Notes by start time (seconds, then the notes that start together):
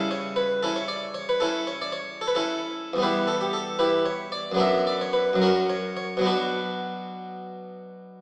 Already playing: C#3 G3 C#4 E4
0.11 C#5
0.36 B4
0.63 C#4 E4 A4
0.76 C#5
0.88 D5
1.14 C#5
1.29 B4
1.40 C#4 E4 A4
1.67 C#5
1.82 D5
1.92 C#5
2.21 A4
2.28 B4
2.35 C#4 E4 A4
2.93 E2 G3
2.98 B3 B4
3.03 E4 G4
3.27 A4
3.41 G4
3.53 A4
3.79 E4 G4 B4
4.06 C#5
4.32 D5
4.52 F#2 F#3
4.56 B3 D4 E5
4.87 D5
5.01 C#5
5.13 B4
5.33 F#2 F#3
5.42 C#4 F#4 A#4
5.70 C#5
5.97 C#5
6.17 B2 F#3
6.21 B3 B4
6.27 D4 F#4